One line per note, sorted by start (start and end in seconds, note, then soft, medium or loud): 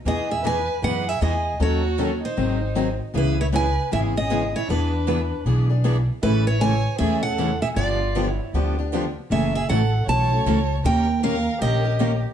0.05 0.67 E2 medium
0.05 0.27 E3 medium
0.05 0.27 G#3 medium
0.05 0.27 B3 medium
0.05 0.27 D#4 medium
0.05 0.28 G#4 medium
0.05 0.27 G#4 medium
0.05 0.31 D#5 medium
0.29 0.43 G#4 medium
0.29 0.45 E5 medium
0.44 0.55 E3 medium
0.44 0.55 G#3 medium
0.44 0.55 B3 medium
0.44 0.56 D#4 medium
0.44 0.56 G#4 medium
0.44 0.80 B4 medium
0.44 0.84 G#5 medium
0.82 1.15 F#2 medium
0.82 1.04 E3 medium
0.82 1.04 G#3 medium
0.82 1.04 B3 medium
0.82 1.04 D#4 medium
0.82 1.05 G#4 medium
0.82 1.09 B4 medium
0.82 1.09 F#5 medium
1.08 1.21 G#4 medium
1.08 1.22 E5 medium
1.21 1.54 E2 medium
1.21 1.32 E3 medium
1.21 1.32 G#3 medium
1.21 1.33 B3 medium
1.21 1.33 D#4 medium
1.21 1.57 G#4 medium
1.21 1.33 G#4 medium
1.21 1.58 D#5 medium
1.59 2.21 D#2 medium
1.59 1.81 D#3 medium
1.59 1.81 F#3 medium
1.59 1.81 C#4 medium
1.59 1.81 D#4 medium
1.59 2.19 F#4 medium
1.59 1.81 A4 medium
1.59 2.25 C#5 medium
1.98 2.10 D#3 medium
1.98 2.10 F#3 medium
1.98 2.10 C#4 medium
1.98 2.10 D#4 medium
1.98 2.10 A4 medium
2.23 2.96 D#4 medium
2.23 2.97 C5 medium
2.37 2.99 G#1 medium
2.37 2.58 D#3 medium
2.37 2.58 F#3 medium
2.37 2.58 C4 medium
2.37 2.58 D#4 medium
2.37 2.59 G#4 medium
2.75 2.87 D#3 medium
2.75 2.87 F#3 medium
2.75 2.87 C4 medium
2.75 2.87 D#4 medium
2.75 2.87 G#4 medium
3.14 3.76 C#2 medium
3.14 3.35 C#3 medium
3.14 3.35 E3 medium
3.14 3.35 G#3 medium
3.14 3.35 B3 medium
3.14 3.36 C#4 medium
3.14 3.36 E4 medium
3.14 3.38 E4 medium
3.14 3.35 G#4 medium
3.14 3.40 B4 medium
3.40 3.46 E4 medium
3.40 3.46 C#5 medium
3.52 3.64 C#3 medium
3.52 3.64 E3 medium
3.52 3.64 G#3 medium
3.52 3.64 B3 medium
3.52 3.64 C#4 medium
3.52 3.65 E4 medium
3.52 3.64 G#4 medium
3.52 3.90 B4 medium
3.52 3.92 G#5 medium
3.91 4.54 G#1 medium
3.91 4.12 C#3 medium
3.91 4.13 E3 medium
3.91 4.13 G#3 medium
3.91 4.13 B3 medium
3.91 4.13 C#4 medium
3.91 4.13 E4 medium
3.91 4.13 G#4 medium
3.91 3.99 E5 medium
4.16 4.30 B3 soft
4.16 4.30 C#4 soft
4.16 4.30 G#4 medium
4.16 4.54 G#4 medium
4.16 4.55 D#5 medium
4.30 4.41 C#3 medium
4.30 4.42 E3 medium
4.30 4.41 G#3 medium
4.30 4.42 B3 medium
4.30 4.42 C#4 medium
4.30 4.41 E4 medium
4.30 4.42 G#4 medium
4.55 4.68 E4 medium
4.55 4.70 C#5 medium
4.68 5.30 E2 medium
4.68 4.90 E3 medium
4.68 4.90 B3 medium
4.68 5.42 D4 medium
4.68 4.90 D4 medium
4.68 4.90 G#4 medium
4.68 4.90 B4 medium
4.68 5.43 B4 medium
5.07 5.18 E3 medium
5.07 5.18 B3 medium
5.07 5.19 D4 medium
5.07 5.19 G#4 medium
5.07 5.19 B4 medium
5.45 6.07 B1 medium
5.45 5.67 E3 medium
5.45 5.67 B3 medium
5.45 5.67 D4 medium
5.45 5.67 G#4 medium
5.45 5.67 B4 medium
5.69 5.83 B3 soft
5.69 5.83 D4 soft
5.69 5.84 G#4 medium
5.84 5.95 E3 medium
5.84 5.95 B3 medium
5.84 5.96 D4 medium
5.84 5.96 G#4 medium
5.84 5.96 B4 loud
6.22 6.84 A1 medium
6.22 6.44 C#3 medium
6.22 6.44 E3 medium
6.22 6.44 G#3 medium
6.22 6.44 A3 medium
6.22 6.44 C#4 medium
6.22 6.45 E4 medium
6.22 6.44 G#4 medium
6.22 6.45 A4 medium
6.22 6.45 B4 medium
6.47 6.60 E4 medium
6.47 6.62 C#5 medium
6.61 6.73 C#3 medium
6.61 6.73 E3 medium
6.61 6.73 G#3 medium
6.61 6.73 A3 medium
6.61 6.73 C#4 medium
6.61 6.73 E4 medium
6.61 6.73 G#4 medium
6.61 6.73 A4 medium
6.61 6.97 C#5 medium
6.61 6.98 G#5 medium
6.98 7.61 E2 medium
6.98 7.21 C#3 medium
6.98 7.21 E3 medium
6.98 7.21 G#3 medium
6.98 7.21 A3 medium
6.98 7.21 C#4 medium
6.98 7.21 E4 medium
6.98 7.21 G#4 medium
6.98 7.21 A4 medium
6.98 7.22 E5 medium
7.22 7.37 A3 soft
7.22 7.38 C#4 soft
7.22 7.38 G#4 medium
7.22 7.59 A4 medium
7.22 7.59 F#5 medium
7.38 7.49 C#3 medium
7.38 7.49 E3 medium
7.38 7.50 G#3 medium
7.38 7.50 A3 medium
7.38 7.50 C#4 medium
7.38 7.50 E4 medium
7.38 7.50 G#4 medium
7.38 7.50 A4 medium
7.62 7.69 G#4 medium
7.62 7.67 E5 medium
7.76 8.38 G1 medium
7.76 7.98 D3 medium
7.76 7.98 F3 medium
7.76 7.98 B3 medium
7.76 7.98 D4 medium
7.76 8.27 F4 medium
7.76 7.98 G4 medium
7.76 8.27 D5 medium
8.15 8.27 D3 medium
8.15 8.27 F3 medium
8.15 8.27 B3 medium
8.15 8.27 D4 medium
8.15 8.27 G4 medium
8.27 8.49 E4 medium
8.27 8.50 C#5 medium
8.53 9.15 D2 medium
8.53 8.75 D3 medium
8.53 8.75 F3 medium
8.53 8.75 B3 medium
8.53 8.75 D4 medium
8.53 8.76 G4 medium
8.79 8.93 B3 soft
8.79 8.92 D4 soft
8.79 8.92 G4 medium
8.94 9.04 D3 medium
8.94 9.04 F3 medium
8.94 9.04 B3 medium
8.94 9.04 D4 medium
8.94 9.05 G4 medium
9.30 9.61 F#1 medium
9.30 9.52 C#3 medium
9.30 9.52 E3 medium
9.30 9.52 F#3 medium
9.30 9.52 A3 medium
9.30 9.52 C#4 medium
9.30 9.52 E4 medium
9.30 9.52 F#4 medium
9.30 9.53 G#4 medium
9.30 9.52 A4 medium
9.30 9.54 E5 medium
9.55 9.68 G#4 medium
9.55 9.69 E5 medium
9.69 10.02 A1 medium
9.69 9.81 C#3 medium
9.69 9.81 E3 medium
9.69 9.80 F#3 medium
9.69 9.81 A3 medium
9.69 9.81 C#4 medium
9.69 9.81 E4 medium
9.69 9.81 F#4 medium
9.69 10.05 A4 medium
9.69 9.81 A4 medium
9.69 10.09 F#5 medium
10.07 10.40 B1 medium
10.07 10.29 C#3 medium
10.07 10.29 E3 medium
10.07 10.29 F#3 medium
10.07 10.29 A3 medium
10.07 10.29 C#4 medium
10.07 10.29 E4 medium
10.07 10.29 F#4 medium
10.07 10.29 A4 medium
10.07 10.80 C#5 medium
10.07 10.81 A5 medium
10.32 10.46 A3 soft
10.32 10.46 C#4 medium
10.32 10.46 F#4 medium
10.45 10.78 C#2 medium
10.45 10.58 C#3 medium
10.45 10.58 E3 medium
10.45 10.57 F#3 medium
10.45 10.58 A3 medium
10.45 10.58 C#4 medium
10.45 10.58 E4 medium
10.45 10.58 F#4 medium
10.45 10.58 A4 medium
10.84 11.46 D#2 medium
10.84 11.06 D#3 medium
10.84 11.06 A#3 medium
10.84 11.06 C#4 medium
10.84 11.06 G4 medium
10.84 11.06 A#4 medium
10.84 11.21 A#4 medium
10.84 11.21 G5 loud
11.22 11.34 D#3 medium
11.22 11.34 A#3 medium
11.22 11.34 C#4 medium
11.22 11.34 G4 medium
11.22 11.58 A#4 medium
11.22 11.35 A#4 medium
11.22 11.59 F5 medium
11.61 12.22 A#1 medium
11.61 11.82 D#3 medium
11.61 11.82 A#3 medium
11.61 11.83 C#4 medium
11.61 12.20 G4 medium
11.61 11.83 G4 medium
11.61 11.83 A#4 medium
11.61 12.20 D#5 medium
11.85 11.99 C#4 soft
11.85 11.99 G4 medium
11.85 11.99 A#4 medium
12.00 12.11 D#3 medium
12.00 12.11 A#3 medium
12.00 12.11 C#4 medium
12.00 12.11 G4 medium
12.00 12.11 A#4 medium